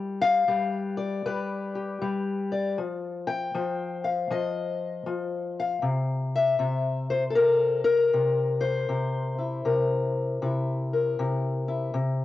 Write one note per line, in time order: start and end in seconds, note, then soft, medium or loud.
0.00 0.47 G3 medium
0.21 0.97 F5 loud
0.48 1.25 G3 medium
0.48 1.24 B4 soft
0.97 2.01 D5 medium
1.25 2.00 G3 medium
1.25 2.78 B4 medium
1.75 2.75 G4 soft
2.01 2.78 G3 medium
2.52 2.78 D5 medium
2.78 3.53 F3 medium
3.27 4.03 G5 loud
3.55 4.29 F3 medium
3.55 7.05 C5 soft
4.04 4.31 F5 medium
4.31 5.05 F3 medium
4.31 5.56 D#5 medium
5.06 5.80 F3 medium
5.60 5.85 F5 medium
5.82 6.59 C3 medium
6.36 7.10 E5 medium
6.59 7.37 C3 medium
7.10 7.23 C5 medium
7.30 8.12 A4 medium
7.35 8.13 C3 medium
7.35 7.83 A#4 medium
7.84 9.38 A#4 loud
8.13 8.88 C3 medium
8.61 11.95 C5 medium
8.89 9.64 C3 medium
9.38 10.41 E4 soft
9.65 10.41 C3 medium
9.65 10.91 A#4 soft
10.42 11.18 C3 medium
10.42 11.67 E4 soft
10.93 11.93 A#4 soft
11.19 11.92 C3 medium
11.68 11.92 E4 soft
11.94 12.25 C3 medium